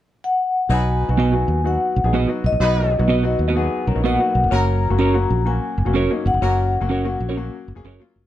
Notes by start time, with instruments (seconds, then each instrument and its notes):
0.24 vibraphone F#5
0.69 fingered electric bass B1, grand piano F#3 B3 D#4 F#4, horn section F#3 B3 D#4 B4, vibraphone G#5
1.08 fingered electric bass B1, grand piano F#3 B3 D#4 F#4
1.17 clean electric guitar B3 F#4 B4 D#5, vibraphone G#5
1.32 grand piano F#3 B3 D#4 F#4
1.48 fingered electric bass D#2
1.64 grand piano F#3 B3 D#4 F#4, vibraphone F#5
1.96 fingered electric bass B1
2.04 fingered electric bass A#1, grand piano F#3 B3 D#4 G#4
2.13 clean electric guitar B3 F#4 B4 D#5
2.28 grand piano F#3 B3 D#4 F#4
2.44 fingered electric bass B1, vibraphone D#5
2.52 fingered electric bass A#1
2.60 fingered electric bass B1, grand piano F#3 B3 D#4 F#4, horn section F#3 B3 D#4 B4
2.99 fingered electric bass B1, grand piano F#3 B3 D#4 F#4
3.08 clean electric guitar B3 F#4 B4 D#5
3.23 grand piano F#3 B3 D#4 F#4
3.39 fingered electric bass D#2
3.48 clean electric guitar B3 F#4 B4 D#5
3.56 grand piano F#3 B3 D#4 F#4, clean electric guitar B3 G#4
3.87 fingered electric bass B1, clean electric guitar C#4 A#4
3.95 fingered electric bass A#1, grand piano F#3 B3 D#4 F#4
4.04 clean electric guitar A#3 B3 F#4 B4 D#5, vibraphone F#5
4.19 grand piano F#3 B3 D#4 F#4
4.35 fingered electric bass B1
4.44 fingered electric bass F1
4.50 fingered electric bass F#1, grand piano F#3 A#3 C#4 F#4, horn section F#3 A#3 C#4 A#4, vibraphone A#5
4.89 fingered electric bass F#1, grand piano F#3 A#3 C#4 F#4
4.99 clean electric guitar C#4 F#4 A#4 C#5, vibraphone A#5
5.14 grand piano F#3 A#3 C#4 F#4
5.30 fingered electric bass A#1
5.45 grand piano F#3 A#3 C#4 F#4, vibraphone G#5
5.78 fingered electric bass F#1
5.85 fingered electric bass F1, grand piano F#3 A#3 C#4 F#4
5.94 clean electric guitar C#4 F#4 A#4 C#5
6.10 grand piano F#3 A#3 C#4 D#4
6.26 fingered electric bass F#1, vibraphone F#5
6.34 fingered electric bass F1
6.41 fingered electric bass F#1, grand piano F#3 A#3 C#4 F#4, horn section F#3 A#3 C#4 A#4
6.81 fingered electric bass F#1, grand piano F#3 A#3 C#4 F#4
6.89 clean electric guitar C#4 F#4 A#4 C#5
7.05 grand piano F#3 A#3 C#4 F#4
7.20 fingered electric bass A#1
7.29 clean electric guitar C#4 F#4 A#4 C#5
7.37 grand piano F#3 A#3 C#4 F#4
7.68 fingered electric bass F#1
7.75 fingered electric bass F1, grand piano F#3 A#3 C#4 G#4
7.84 fingered electric bass F#1, clean electric guitar C#4 F#4 A#4 C#5
8.00 grand piano F#3 A#3 C#4 F4
8.16 fingered electric bass F1